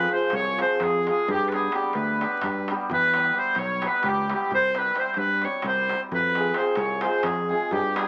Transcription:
Already playing: hammered dulcimer F3, clarinet B4
0.11 hammered dulcimer F3 G#3 C4 F4, clarinet C5, accordion C5
0.30 fingered electric bass C2, accordion C#5, darbuka tek
0.35 clarinet C#5
0.58 hammered dulcimer F3 G#3 C4 F4, clarinet C5, accordion C5, darbuka tek
0.70 darbuka tek
0.80 fingered electric bass F2, clarinet G#4, accordion G#4, darbuka tek, darbuka dum
0.95 darbuka tek
1.07 hammered dulcimer F3 G#3 C4 F4, clarinet G#4, accordion G#4, darbuka tek
1.28 fingered electric bass G2, clarinet G4, darbuka dum
1.32 accordion G4
1.40 darbuka tek
1.48 accordion B4, clarinet B4
1.52 hammered dulcimer G3 B3 D4 G4, accordion G#4, clarinet G#4, darbuka tek
1.63 darbuka tek
1.72 hammered dulcimer G3 B3 D4 G4, accordion G4, clarinet G4, darbuka tek
1.93 fingered electric bass D2, accordion B4, clarinet B4, darbuka tek
2.20 hammered dulcimer G3 B3 D4 G4, darbuka tek
2.32 darbuka tek
2.41 fingered electric bass G2, darbuka tek, darbuka dum
2.54 darbuka tek
2.68 hammered dulcimer G3 B3 D4 G4, darbuka tek
2.89 fingered electric bass E2, darbuka dum
2.93 clarinet B4, accordion B4
3.02 darbuka tek
3.14 hammered dulcimer G3 B3 E4 G4, darbuka tek
3.24 darbuka tek
3.33 hammered dulcimer G3 B3 E4 G4
3.38 clarinet C5, accordion C5
3.55 fingered electric bass B1, accordion C#5, darbuka tek
3.59 clarinet C#5
3.82 hammered dulcimer G3 B3 E4 G4, accordion B4, darbuka tek
3.88 clarinet B4, darbuka tek
4.03 fingered electric bass C#2, accordion G4, darbuka tek, darbuka dum
4.09 clarinet G4
4.16 darbuka tek
4.28 hammered dulcimer G3 B3 E4 G4, accordion G4, darbuka tek
4.35 clarinet G4
4.51 fingered electric bass C2, accordion C5, clarinet C5, darbuka dum
4.63 darbuka tek
4.74 hammered dulcimer G3 C4 E4 G4, darbuka tek
4.78 clarinet B4, accordion B4
4.85 darbuka tek
4.94 hammered dulcimer G3 C4 E4 G4, accordion C5, darbuka tek
5.00 clarinet C5
5.04 darbuka tek
5.14 fingered electric bass G2, clarinet B4, darbuka tek
5.18 accordion B4
5.28 darbuka tek
5.42 hammered dulcimer G3 C4 E4 G4, clarinet C#5, darbuka tek
5.46 accordion C#5
5.53 darbuka tek
5.62 fingered electric bass C2, darbuka tek
5.67 accordion C5, clarinet C5
5.77 darbuka tek
5.89 hammered dulcimer G3 C4 E4 G4, darbuka tek
6.01 darbuka tek
6.12 fingered electric bass F2, accordion B4, clarinet B4, darbuka dum
6.23 darbuka tek
6.35 hammered dulcimer G#3 C4 F4 G#4, darbuka tek
6.44 darbuka tek
6.54 hammered dulcimer G#3 C4 F4 G#4, accordion C5, clarinet C5, darbuka tek
6.75 fingered electric bass C2, accordion C#5, clarinet C#5, darbuka tek
7.01 hammered dulcimer G#3 C4 F4 G#4, clarinet C5, accordion C5, darbuka tek
7.13 darbuka tek
7.23 fingered electric bass F2, accordion G#4, clarinet G#4, darbuka tek, darbuka dum
7.37 darbuka tek
7.49 hammered dulcimer G#3 C4 F4 G#4, clarinet G#4, accordion G#4
7.71 fingered electric bass G2, accordion G4, clarinet G4, darbuka dum
7.84 darbuka tek
7.94 hammered dulcimer G3 B3 D4 G4, accordion G#4, clarinet G#4, darbuka tek

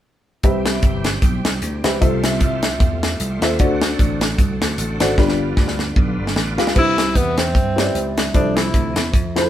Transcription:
0.42 slap bass C2, upright piano C3 G4 B4 C5 E5, french horn section G3 C4 E4, tonewheel organ G3 C4 G4, kick, closed hi-hat
0.66 snare, closed hi-hat
0.83 slap bass G1, kick, closed hi-hat
1.04 snare, closed hi-hat
1.22 slap bass B1, kick, closed hi-hat
1.45 slap bass C2, snare, closed hi-hat
1.62 slap bass D2, closed hi-hat
1.84 slap bass C#2, upright piano G4 B4 C5 E5, snare, closed hi-hat
2.01 slap bass C2, upright piano C3 F4 A4 C5 E5, tonewheel organ A3 F4, french horn section A3 C4 F4 E5, kick, closed hi-hat
2.24 snare, closed hi-hat
2.41 slap bass C2, kick, closed hi-hat
2.62 snare, closed hi-hat
2.80 slap bass E2, kick, closed hi-hat
3.03 snare, closed hi-hat
3.20 slap bass C2, closed hi-hat
3.42 slap bass D#2, upright piano F4 A4 C5 E5, snare, closed hi-hat
3.59 slap bass D2, upright piano D3 F#4 A4 C5 D5, tonewheel organ D3 A3 F#4, french horn section F#3 D4, kick, closed hi-hat
3.82 snare, closed hi-hat
3.99 slap bass A1, kick, closed hi-hat
4.21 snare, closed hi-hat
4.38 slap bass C2, kick, closed hi-hat
4.61 slap bass D2, snare, closed hi-hat
4.78 slap bass A1, closed hi-hat
5.00 slap bass G#1, upright piano F#4 A4 C5 D5, snare, closed hi-hat
5.17 slap bass G1, upright piano G2 F4 G4 B4 D5, french horn section F3 G3 B3, tonewheel organ G3 B3 F4, kick, snare
5.28 snare
5.57 slap bass D2, kick, snare
5.68 snare
5.79 snare
5.96 slap bass B1, kick
6.19 slap bass G1
6.27 snare
6.36 slap bass A1, snare
6.57 slap bass C#2, upright piano F4 G4 B4 F5, snare
6.67 snare
6.75 slap bass C2, upright piano C3 D4 G4 B4 C5, french horn section G3 C4 E5, tenor saxophone E4, kick, crash
6.80 upright piano E4
6.98 snare, closed hi-hat
7.15 slap bass E2, tenor saxophone B3, kick, closed hi-hat
7.37 tenor saxophone C4, snare, closed hi-hat
7.55 slap bass G2, kick, closed hi-hat
7.76 upright piano E4 G4 B4 C#5, snare, closed hi-hat
7.81 upright piano D5
7.95 slap bass C#2, closed hi-hat
8.17 snare, closed hi-hat
8.33 slap bass C2, upright piano C3 F3 E4 A4 C5, french horn section F3 A3 C4, tenor saxophone D4, kick, closed hi-hat
8.56 tenor saxophone E4, snare, closed hi-hat
8.74 slap bass D2, kick, closed hi-hat
8.96 slap bass E2, snare, closed hi-hat
9.13 slap bass F2, kick, closed hi-hat
9.36 upright piano E4 F4 G#4 C5, snare, closed hi-hat
9.41 upright piano A4

